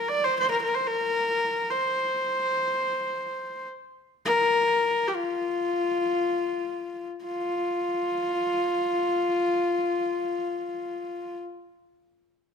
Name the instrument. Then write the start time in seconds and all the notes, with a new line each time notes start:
horsehead fiddle
Already playing: A#4
0.09 D5
0.24 C5
0.40 C5
0.51 A#4
0.63 A#4
0.75 C5
0.87 A#4
1.71 C5
4.26 A#4
5.08 G4
5.15 F4
7.25 F4